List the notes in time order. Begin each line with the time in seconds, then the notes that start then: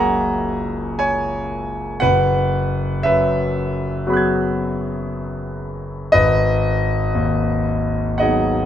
Already playing: F#1 C#2 F#3 A#3 F#4 G#4 C#5 E5 F#5 G#5 A#5
0.99 C#5 G#5
2.00 F#1 B4 F#5
3.03 F#2 B4 E5
4.07 F#3 B3 F#4 G#4 F#5 B5
4.14 F#6 G#6
6.12 G#1 B4 D#5
7.15 D#2
8.18 F#3 B3 D#4 G#4 D#5 F#5